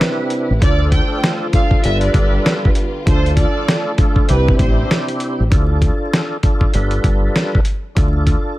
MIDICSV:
0, 0, Header, 1, 7, 480
1, 0, Start_track
1, 0, Tempo, 612245
1, 485, Time_signature, 4, 2, 24, 8
1, 6732, End_track
2, 0, Start_track
2, 0, Title_t, "Violin section"
2, 0, Program_c, 0, 48
2, 484, Note_on_c, 0, 74, 110
2, 701, Note_off_c, 0, 74, 0
2, 730, Note_on_c, 0, 79, 82
2, 944, Note_off_c, 0, 79, 0
2, 1209, Note_on_c, 0, 77, 91
2, 1337, Note_off_c, 0, 77, 0
2, 1447, Note_on_c, 0, 76, 91
2, 1576, Note_off_c, 0, 76, 0
2, 1587, Note_on_c, 0, 74, 82
2, 1675, Note_off_c, 0, 74, 0
2, 1691, Note_on_c, 0, 74, 76
2, 1905, Note_off_c, 0, 74, 0
2, 2409, Note_on_c, 0, 72, 93
2, 2624, Note_off_c, 0, 72, 0
2, 2649, Note_on_c, 0, 74, 80
2, 3008, Note_off_c, 0, 74, 0
2, 3361, Note_on_c, 0, 71, 84
2, 3579, Note_off_c, 0, 71, 0
2, 3611, Note_on_c, 0, 72, 72
2, 3825, Note_off_c, 0, 72, 0
2, 6732, End_track
3, 0, Start_track
3, 0, Title_t, "String section"
3, 0, Program_c, 1, 48
3, 0, Note_on_c, 1, 64, 76
3, 0, Note_on_c, 1, 67, 75
3, 0, Note_on_c, 1, 71, 92
3, 472, Note_off_c, 1, 64, 0
3, 472, Note_off_c, 1, 67, 0
3, 472, Note_off_c, 1, 71, 0
3, 478, Note_on_c, 1, 65, 86
3, 478, Note_on_c, 1, 69, 85
3, 478, Note_on_c, 1, 72, 100
3, 1422, Note_off_c, 1, 65, 0
3, 1423, Note_off_c, 1, 69, 0
3, 1423, Note_off_c, 1, 72, 0
3, 1438, Note_on_c, 1, 65, 72
3, 1438, Note_on_c, 1, 67, 75
3, 1438, Note_on_c, 1, 71, 93
3, 2382, Note_off_c, 1, 65, 0
3, 2382, Note_off_c, 1, 67, 0
3, 2382, Note_off_c, 1, 71, 0
3, 2418, Note_on_c, 1, 65, 89
3, 2419, Note_on_c, 1, 62, 88
3, 2419, Note_on_c, 1, 69, 98
3, 3353, Note_off_c, 1, 62, 0
3, 3353, Note_off_c, 1, 65, 0
3, 3353, Note_off_c, 1, 69, 0
3, 3368, Note_on_c, 1, 60, 82
3, 3368, Note_on_c, 1, 64, 83
3, 3368, Note_on_c, 1, 67, 89
3, 4307, Note_off_c, 1, 64, 0
3, 4308, Note_off_c, 1, 60, 0
3, 4308, Note_off_c, 1, 67, 0
3, 6732, End_track
4, 0, Start_track
4, 0, Title_t, "Tonewheel organ"
4, 0, Program_c, 2, 16
4, 0, Note_on_c, 2, 48, 98
4, 0, Note_on_c, 2, 60, 89
4, 0, Note_on_c, 2, 62, 90
4, 0, Note_on_c, 2, 64, 85
4, 0, Note_on_c, 2, 71, 100
4, 420, Note_off_c, 2, 48, 0
4, 421, Note_off_c, 2, 60, 0
4, 423, Note_off_c, 2, 62, 0
4, 424, Note_off_c, 2, 64, 0
4, 425, Note_off_c, 2, 71, 0
4, 473, Note_on_c, 2, 62, 92
4, 477, Note_on_c, 2, 65, 85
4, 481, Note_on_c, 2, 69, 99
4, 1153, Note_off_c, 2, 62, 0
4, 1155, Note_off_c, 2, 65, 0
4, 1157, Note_off_c, 2, 69, 0
4, 1198, Note_on_c, 2, 62, 95
4, 1203, Note_on_c, 2, 65, 86
4, 1206, Note_on_c, 2, 69, 104
4, 1434, Note_off_c, 2, 62, 0
4, 1436, Note_off_c, 2, 65, 0
4, 1439, Note_off_c, 2, 69, 0
4, 1442, Note_on_c, 2, 55, 93
4, 1444, Note_on_c, 2, 62, 90
4, 1446, Note_on_c, 2, 65, 80
4, 1448, Note_on_c, 2, 69, 78
4, 1450, Note_on_c, 2, 71, 96
4, 2117, Note_off_c, 2, 55, 0
4, 2118, Note_off_c, 2, 62, 0
4, 2119, Note_off_c, 2, 65, 0
4, 2121, Note_off_c, 2, 69, 0
4, 2122, Note_off_c, 2, 71, 0
4, 2393, Note_on_c, 2, 62, 90
4, 2398, Note_on_c, 2, 65, 75
4, 2403, Note_on_c, 2, 69, 93
4, 3073, Note_off_c, 2, 62, 0
4, 3076, Note_off_c, 2, 65, 0
4, 3078, Note_off_c, 2, 69, 0
4, 3123, Note_on_c, 2, 62, 104
4, 3127, Note_on_c, 2, 65, 87
4, 3130, Note_on_c, 2, 69, 112
4, 3355, Note_off_c, 2, 62, 0
4, 3361, Note_on_c, 2, 48, 97
4, 3362, Note_on_c, 2, 60, 88
4, 3365, Note_on_c, 2, 62, 89
4, 3366, Note_off_c, 2, 65, 0
4, 3367, Note_on_c, 2, 64, 86
4, 3368, Note_off_c, 2, 69, 0
4, 3369, Note_on_c, 2, 67, 99
4, 4262, Note_off_c, 2, 48, 0
4, 4262, Note_off_c, 2, 60, 0
4, 4264, Note_off_c, 2, 62, 0
4, 4265, Note_off_c, 2, 64, 0
4, 4266, Note_off_c, 2, 67, 0
4, 4314, Note_on_c, 2, 62, 86
4, 4318, Note_on_c, 2, 65, 79
4, 4323, Note_on_c, 2, 69, 98
4, 4994, Note_off_c, 2, 62, 0
4, 4996, Note_off_c, 2, 65, 0
4, 4998, Note_off_c, 2, 69, 0
4, 5040, Note_on_c, 2, 62, 94
4, 5044, Note_on_c, 2, 65, 82
4, 5048, Note_on_c, 2, 69, 98
4, 5275, Note_off_c, 2, 62, 0
4, 5277, Note_off_c, 2, 65, 0
4, 5280, Note_off_c, 2, 69, 0
4, 5283, Note_on_c, 2, 55, 90
4, 5285, Note_on_c, 2, 62, 85
4, 5286, Note_on_c, 2, 65, 76
4, 5289, Note_on_c, 2, 69, 74
4, 5291, Note_on_c, 2, 71, 97
4, 5958, Note_off_c, 2, 55, 0
4, 5959, Note_off_c, 2, 62, 0
4, 5960, Note_off_c, 2, 65, 0
4, 5961, Note_off_c, 2, 69, 0
4, 5962, Note_off_c, 2, 71, 0
4, 6233, Note_on_c, 2, 62, 84
4, 6237, Note_on_c, 2, 65, 73
4, 6242, Note_on_c, 2, 69, 91
4, 6732, Note_off_c, 2, 62, 0
4, 6732, Note_off_c, 2, 65, 0
4, 6732, Note_off_c, 2, 69, 0
4, 6732, End_track
5, 0, Start_track
5, 0, Title_t, "String section"
5, 0, Program_c, 3, 48
5, 0, Note_on_c, 3, 48, 84
5, 0, Note_on_c, 3, 55, 80
5, 0, Note_on_c, 3, 64, 92
5, 0, Note_on_c, 3, 71, 76
5, 477, Note_off_c, 3, 48, 0
5, 477, Note_off_c, 3, 55, 0
5, 477, Note_off_c, 3, 64, 0
5, 477, Note_off_c, 3, 71, 0
5, 480, Note_on_c, 3, 50, 89
5, 480, Note_on_c, 3, 53, 76
5, 480, Note_on_c, 3, 57, 69
5, 481, Note_on_c, 3, 65, 102
5, 1433, Note_off_c, 3, 53, 0
5, 1433, Note_off_c, 3, 57, 0
5, 1451, Note_on_c, 3, 59, 72
5, 1452, Note_on_c, 3, 55, 77
5, 2399, Note_off_c, 3, 55, 0
5, 2399, Note_off_c, 3, 59, 0
5, 2414, Note_on_c, 3, 53, 76
5, 2414, Note_on_c, 3, 57, 80
5, 3334, Note_off_c, 3, 50, 0
5, 3334, Note_off_c, 3, 65, 0
5, 3358, Note_on_c, 3, 48, 82
5, 3359, Note_on_c, 3, 55, 76
5, 3359, Note_on_c, 3, 60, 79
5, 3360, Note_off_c, 3, 53, 0
5, 3360, Note_off_c, 3, 57, 0
5, 3360, Note_on_c, 3, 64, 90
5, 4312, Note_off_c, 3, 48, 0
5, 4313, Note_off_c, 3, 55, 0
5, 4313, Note_off_c, 3, 60, 0
5, 4313, Note_off_c, 3, 64, 0
5, 6732, End_track
6, 0, Start_track
6, 0, Title_t, "Fingered electric bass"
6, 0, Program_c, 4, 33
6, 394, Note_on_c, 4, 33, 88
6, 465, Note_off_c, 4, 33, 0
6, 487, Note_on_c, 4, 38, 105
6, 776, Note_off_c, 4, 38, 0
6, 1450, Note_on_c, 4, 31, 107
6, 1629, Note_off_c, 4, 31, 0
6, 1681, Note_on_c, 4, 31, 96
6, 1863, Note_off_c, 4, 31, 0
6, 2407, Note_on_c, 4, 38, 107
6, 2696, Note_off_c, 4, 38, 0
6, 3370, Note_on_c, 4, 36, 105
6, 3549, Note_off_c, 4, 36, 0
6, 3601, Note_on_c, 4, 33, 104
6, 3784, Note_off_c, 4, 33, 0
6, 4234, Note_on_c, 4, 33, 86
6, 4305, Note_off_c, 4, 33, 0
6, 4328, Note_on_c, 4, 38, 99
6, 4617, Note_off_c, 4, 38, 0
6, 5290, Note_on_c, 4, 31, 102
6, 5469, Note_off_c, 4, 31, 0
6, 5521, Note_on_c, 4, 31, 91
6, 5704, Note_off_c, 4, 31, 0
6, 6247, Note_on_c, 4, 38, 109
6, 6536, Note_off_c, 4, 38, 0
6, 6732, End_track
7, 0, Start_track
7, 0, Title_t, "Drums"
7, 8, Note_on_c, 9, 38, 112
7, 14, Note_on_c, 9, 42, 71
7, 86, Note_off_c, 9, 38, 0
7, 92, Note_off_c, 9, 42, 0
7, 237, Note_on_c, 9, 42, 80
7, 316, Note_off_c, 9, 42, 0
7, 484, Note_on_c, 9, 42, 100
7, 485, Note_on_c, 9, 36, 120
7, 563, Note_off_c, 9, 36, 0
7, 563, Note_off_c, 9, 42, 0
7, 720, Note_on_c, 9, 36, 78
7, 720, Note_on_c, 9, 42, 79
7, 798, Note_off_c, 9, 36, 0
7, 799, Note_off_c, 9, 42, 0
7, 969, Note_on_c, 9, 38, 121
7, 978, Note_on_c, 9, 42, 80
7, 1047, Note_off_c, 9, 38, 0
7, 1056, Note_off_c, 9, 42, 0
7, 1200, Note_on_c, 9, 42, 73
7, 1202, Note_on_c, 9, 36, 97
7, 1278, Note_off_c, 9, 42, 0
7, 1281, Note_off_c, 9, 36, 0
7, 1340, Note_on_c, 9, 36, 89
7, 1418, Note_off_c, 9, 36, 0
7, 1440, Note_on_c, 9, 42, 100
7, 1518, Note_off_c, 9, 42, 0
7, 1576, Note_on_c, 9, 42, 63
7, 1654, Note_off_c, 9, 42, 0
7, 1679, Note_on_c, 9, 36, 97
7, 1680, Note_on_c, 9, 42, 72
7, 1757, Note_off_c, 9, 36, 0
7, 1758, Note_off_c, 9, 42, 0
7, 1928, Note_on_c, 9, 38, 112
7, 1934, Note_on_c, 9, 42, 72
7, 2007, Note_off_c, 9, 38, 0
7, 2012, Note_off_c, 9, 42, 0
7, 2078, Note_on_c, 9, 36, 94
7, 2156, Note_off_c, 9, 36, 0
7, 2157, Note_on_c, 9, 42, 80
7, 2235, Note_off_c, 9, 42, 0
7, 2405, Note_on_c, 9, 36, 122
7, 2405, Note_on_c, 9, 42, 98
7, 2483, Note_off_c, 9, 36, 0
7, 2483, Note_off_c, 9, 42, 0
7, 2557, Note_on_c, 9, 42, 57
7, 2636, Note_off_c, 9, 42, 0
7, 2640, Note_on_c, 9, 36, 79
7, 2641, Note_on_c, 9, 42, 82
7, 2719, Note_off_c, 9, 36, 0
7, 2719, Note_off_c, 9, 42, 0
7, 2889, Note_on_c, 9, 38, 120
7, 2898, Note_on_c, 9, 42, 83
7, 2967, Note_off_c, 9, 38, 0
7, 2976, Note_off_c, 9, 42, 0
7, 3120, Note_on_c, 9, 42, 74
7, 3123, Note_on_c, 9, 36, 94
7, 3199, Note_off_c, 9, 42, 0
7, 3201, Note_off_c, 9, 36, 0
7, 3260, Note_on_c, 9, 36, 90
7, 3339, Note_off_c, 9, 36, 0
7, 3360, Note_on_c, 9, 42, 102
7, 3439, Note_off_c, 9, 42, 0
7, 3516, Note_on_c, 9, 36, 86
7, 3594, Note_off_c, 9, 36, 0
7, 3599, Note_on_c, 9, 36, 95
7, 3600, Note_on_c, 9, 42, 75
7, 3677, Note_off_c, 9, 36, 0
7, 3679, Note_off_c, 9, 42, 0
7, 3849, Note_on_c, 9, 38, 110
7, 3855, Note_on_c, 9, 42, 71
7, 3927, Note_off_c, 9, 38, 0
7, 3933, Note_off_c, 9, 42, 0
7, 3986, Note_on_c, 9, 42, 58
7, 4064, Note_off_c, 9, 42, 0
7, 4078, Note_on_c, 9, 42, 82
7, 4156, Note_off_c, 9, 42, 0
7, 4325, Note_on_c, 9, 36, 122
7, 4325, Note_on_c, 9, 42, 93
7, 4403, Note_off_c, 9, 42, 0
7, 4404, Note_off_c, 9, 36, 0
7, 4561, Note_on_c, 9, 36, 77
7, 4561, Note_on_c, 9, 42, 80
7, 4639, Note_off_c, 9, 36, 0
7, 4639, Note_off_c, 9, 42, 0
7, 4809, Note_on_c, 9, 38, 118
7, 4818, Note_on_c, 9, 42, 80
7, 4888, Note_off_c, 9, 38, 0
7, 4897, Note_off_c, 9, 42, 0
7, 5041, Note_on_c, 9, 42, 73
7, 5043, Note_on_c, 9, 36, 90
7, 5119, Note_off_c, 9, 42, 0
7, 5121, Note_off_c, 9, 36, 0
7, 5181, Note_on_c, 9, 36, 83
7, 5259, Note_off_c, 9, 36, 0
7, 5281, Note_on_c, 9, 42, 94
7, 5359, Note_off_c, 9, 42, 0
7, 5416, Note_on_c, 9, 42, 61
7, 5495, Note_off_c, 9, 42, 0
7, 5519, Note_on_c, 9, 36, 94
7, 5520, Note_on_c, 9, 42, 69
7, 5597, Note_off_c, 9, 36, 0
7, 5599, Note_off_c, 9, 42, 0
7, 5768, Note_on_c, 9, 38, 104
7, 5774, Note_on_c, 9, 42, 69
7, 5846, Note_off_c, 9, 38, 0
7, 5852, Note_off_c, 9, 42, 0
7, 5918, Note_on_c, 9, 36, 89
7, 5997, Note_off_c, 9, 36, 0
7, 5997, Note_on_c, 9, 42, 79
7, 6075, Note_off_c, 9, 42, 0
7, 6245, Note_on_c, 9, 36, 122
7, 6245, Note_on_c, 9, 42, 95
7, 6323, Note_off_c, 9, 42, 0
7, 6324, Note_off_c, 9, 36, 0
7, 6480, Note_on_c, 9, 36, 74
7, 6481, Note_on_c, 9, 42, 78
7, 6559, Note_off_c, 9, 36, 0
7, 6559, Note_off_c, 9, 42, 0
7, 6732, End_track
0, 0, End_of_file